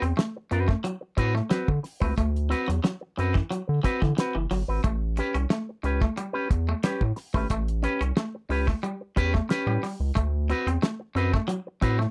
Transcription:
0.02 analog synth bass E2, clean electric guitar C4, closed hi-hat
0.17 clean electric guitar A3, muted clean electric guitar stroke, snare, closed hi-hat
0.37 muted clean electric guitar stroke
0.51 analog synth bass F#2, clean electric guitar C4 F#4 B4, muted clean electric guitar stroke, closed hi-hat
0.68 clean electric guitar A3, muted clean electric guitar stroke, kick, snare
0.84 clean electric guitar F#3, closed hi-hat
1.01 muted clean electric guitar stroke
1.17 analog synth bass A2, clean electric guitar C4 F#4 B4, muted clean electric guitar stroke, kick, closed hi-hat
1.35 clean electric guitar A3, muted clean electric guitar stroke, snare
1.50 clean electric guitar F#3 C4 F#4 B4, snare, closed hi-hat
1.68 analog synth bass D3, muted clean electric guitar stroke, kick
1.83 muted clean electric guitar stroke, snare, open hi-hat
2.00 analog synth bass C#2, clean electric guitar A3 C4 F#4 B4, kick
2.18 analog synth bass D2, clean electric guitar A3, kick, closed hi-hat
2.36 closed hi-hat
2.49 clean electric guitar C4 F#4 B4, muted clean electric guitar stroke, closed hi-hat
2.68 analog synth bass E2, clean electric guitar F#3, closed hi-hat
2.83 clean electric guitar F#3, muted clean electric guitar stroke, snare, closed hi-hat
3.01 muted clean electric guitar stroke
3.18 analog synth bass F#2, clean electric guitar C4 F#4 B4, muted clean electric guitar stroke, closed hi-hat
3.34 clean electric guitar E3, kick, snare
3.51 clean electric guitar F#3, closed hi-hat
3.68 analog synth bass D3, muted clean electric guitar stroke
3.83 clean electric guitar C4 F#4 B4, muted clean electric guitar stroke, kick, closed hi-hat
4.02 analog synth bass D3, clean electric guitar E3, muted clean electric guitar stroke, kick, snare
4.17 clean electric guitar C4 F#4 B4, muted clean electric guitar stroke, snare, closed hi-hat
4.35 analog synth bass F#1, clean electric guitar E3
4.51 analog synth bass G1, clean electric guitar F#3, muted clean electric guitar stroke, snare, open hi-hat
4.68 analog synth bass G#1, clean electric guitar C4 F#4 B4
4.84 analog synth bass A1, clean electric guitar A3, kick, closed hi-hat
5.17 clean electric guitar C#4 G4 B4, muted clean electric guitar stroke, closed hi-hat
5.34 analog synth bass C2, clean electric guitar C#4, closed hi-hat
5.50 clean electric guitar A3, muted clean electric guitar stroke, snare, closed hi-hat
5.69 muted clean electric guitar stroke
5.83 analog synth bass C#2, clean electric guitar C#4 G4 B4, muted clean electric guitar stroke, closed hi-hat
6.01 clean electric guitar A3, muted clean electric guitar stroke, kick, snare
6.16 clean electric guitar G3, muted clean electric guitar stroke, closed hi-hat
6.33 clean electric guitar C#4 G4 B4
6.50 analog synth bass E2, muted clean electric guitar stroke, kick, closed hi-hat
6.68 clean electric guitar A3, muted clean electric guitar stroke
6.83 clean electric guitar G3 C#4 G4 B4, snare, closed hi-hat
7.01 analog synth bass A2, muted clean electric guitar stroke, kick
7.16 muted clean electric guitar stroke, snare, open hi-hat
7.34 analog synth bass G#1, clean electric guitar A3 C#4 G4 B4, kick
7.50 analog synth bass A1, clean electric guitar A3, kick, closed hi-hat
7.68 closed hi-hat
7.83 clean electric guitar C#4 G4 B4, muted clean electric guitar stroke, closed hi-hat
8.01 analog synth bass C2, clean electric guitar C#4, closed hi-hat
8.17 clean electric guitar A3, muted clean electric guitar stroke, snare, closed hi-hat
8.35 muted clean electric guitar stroke
8.49 analog synth bass C#2, clean electric guitar C#4 G4 B4, muted clean electric guitar stroke, open hi-hat
8.67 clean electric guitar A3, muted clean electric guitar stroke, kick, snare
8.83 clean electric guitar G3, closed hi-hat
9.01 muted clean electric guitar stroke
9.16 analog synth bass E2, clean electric guitar C#4 G4 B4, muted clean electric guitar stroke, kick, closed hi-hat
9.34 clean electric guitar A3, muted clean electric guitar stroke, kick, snare
9.49 clean electric guitar C#4 G4 B4, muted clean electric guitar stroke, snare, closed hi-hat
9.67 analog synth bass A2, clean electric guitar G3
9.83 clean electric guitar G3, muted clean electric guitar stroke, snare, open hi-hat
10.00 analog synth bass C#2, muted clean electric guitar stroke
10.15 analog synth bass D2, clean electric guitar A3, kick, closed hi-hat
10.49 clean electric guitar C4 F#4 B4, muted clean electric guitar stroke, closed hi-hat
10.67 analog synth bass E2, clean electric guitar C4, closed hi-hat
10.82 clean electric guitar A3, muted clean electric guitar stroke, snare, closed hi-hat
11.00 muted clean electric guitar stroke
11.15 analog synth bass F#2, clean electric guitar C4 F#4 B4, muted clean electric guitar stroke, closed hi-hat
11.33 clean electric guitar A3, muted clean electric guitar stroke, kick, snare
11.48 clean electric guitar F#3, closed hi-hat
11.67 muted clean electric guitar stroke
11.81 analog synth bass A2, clean electric guitar C4 F#4 B4, muted clean electric guitar stroke, kick, closed hi-hat
11.98 clean electric guitar A3, muted clean electric guitar stroke, snare

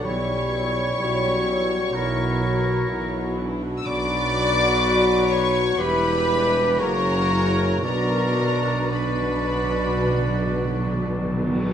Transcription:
0.03 double bass section B1, tuba B1, timpani B2, cello section B2, viola section E3 E4, bassoon G3, clarinet E4, french horn section G4, flute section C#5, violin section C#5 C#6, oboe C#5
0.30 viola section G3 C#4
0.54 viola section E3 E4
0.77 viola section G3 C#4
0.98 tuba B1, double bass section B1, cello section B2, viola section E3 E4, french horn section F#4
1.23 viola section G3 C#4
1.47 viola section E3 E4
1.70 viola section G3 C#4
1.93 tuba B1, double bass section B1, cello section B2, viola section E3 E4, bassoon F#3, clarinet E4, french horn section E4, oboe A#4
2.19 viola section F#3 F#4
2.41 viola section E3 E4, french horn section F#4
2.67 viola section F#3 F#4
2.89 tuba B1, double bass section B1, cello section B2, viola section E3 E4, french horn section E4
3.14 viola section F#3 F#4
3.38 viola section E3 E4, french horn section D4
3.61 viola section F#3 F#4
3.78 violin section E6
3.84 tuba B1, double bass section B1, cello section B2, timpani B2, viola section F#3 F#4, bassoon F#3, clarinet F#4, oboe B4, flute section D5, violin section D5 D6
4.83 french horn section F#4
5.29 flute section C#5, violin section C#5 C#6
5.78 tuba E1, double bass section E1, cello section E2, bassoon E3, viola section G3 E4, clarinet G4, french horn section G4, violin section B4 B5, flute section B4, oboe B4
6.28 viola section D4
6.79 tuba F#1, double bass section F#1, cello section F#2, bassoon C#3, viola section F#3 C#4, clarinet F#4, french horn section F#4, violin section A#4 A#5, flute section A#4, oboe C#5
7.31 french horn section E4
7.83 tuba B1, double bass section B1, bassoon B2, timpani B2, cello section B2, viola section F#3 D4, french horn section D4, clarinet F#4, flute section A#4, violin section A#4 A#5, oboe D5
8.01 timpani B2
8.09 timpani B2
8.19 timpani B2
8.27 timpani B2
8.34 timpani B2
8.42 timpani B2
8.67 timpani B2
8.75 timpani B2
8.83 timpani B2
8.91 bassoon B2, timpani B2, viola section F#3 D4, clarinet F#4, flute section B4, violin section B4 B5, oboe D5
9.00 timpani B2
9.08 timpani B2
9.16 timpani B2
9.24 timpani B2
9.33 timpani B2
9.41 timpani B2
9.49 timpani B2
9.56 timpani B2
9.63 timpani B2
9.72 timpani B2
9.88 timpani B2
9.96 timpani B2
10.06 timpani B2
10.12 timpani B2
10.21 timpani B2
10.29 timpani B2
10.38 timpani B2
10.47 timpani B2
10.54 timpani B2
10.63 timpani B2
10.69 timpani B2
10.78 timpani B2
10.86 timpani B2
10.94 timpani B2
11.02 timpani B2
11.09 timpani B2
11.17 timpani B2
11.25 timpani B2
11.33 timpani B2
11.42 timpani B2
11.49 timpani B2
11.57 timpani B2
11.66 timpani B2

